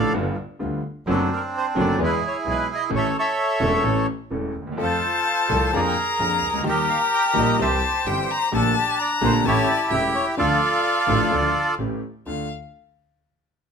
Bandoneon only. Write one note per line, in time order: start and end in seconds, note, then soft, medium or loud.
0.00 0.13 A4 medium
0.00 0.13 D5 medium
0.00 0.13 F5 loud
1.09 1.97 C4 medium
1.09 1.97 D4 medium
1.09 1.20 A4 medium
1.33 1.43 A#4 medium
1.57 1.67 C5 medium
1.80 2.00 D5 medium
2.03 2.90 E4 medium
2.03 2.91 G#4 medium
2.03 2.15 B4 medium
2.27 2.37 C#5 medium
2.51 2.70 B4 medium
2.75 2.84 D#5 medium
2.95 3.17 A4 medium
2.95 3.17 C#5 medium
2.95 3.07 E5 loud
3.18 4.06 A4 medium
3.18 4.07 C#5 medium
3.18 3.84 E5 loud
4.82 5.71 F4 medium
4.82 5.71 A4 medium
4.82 5.72 C5 medium
5.76 6.64 G#4 medium
5.76 6.64 A#4 medium
5.76 5.80 D5 medium
5.87 5.97 G5 medium
6.68 7.57 G4 medium
6.68 7.57 A#4 medium
6.68 6.89 D#5 medium
6.89 7.00 F5 medium
7.14 7.25 G5 loud
7.38 7.61 D#5 medium
7.61 8.49 G4 medium
7.61 8.49 C5 medium
7.61 7.67 E5 medium
7.75 7.85 G5 medium
8.55 9.43 D4 medium
8.55 8.75 A4 medium
8.78 8.98 G4 medium
9.01 9.11 D5 loud
9.25 9.34 C5 medium
9.47 10.35 E4 medium
9.47 10.35 G4 medium
9.47 9.68 C#5 loud
9.70 9.80 D5 medium
9.93 10.03 E5 loud
10.15 10.25 C#5 medium
10.38 11.75 F4 medium
10.38 11.75 A4 medium
10.38 11.75 D5 loud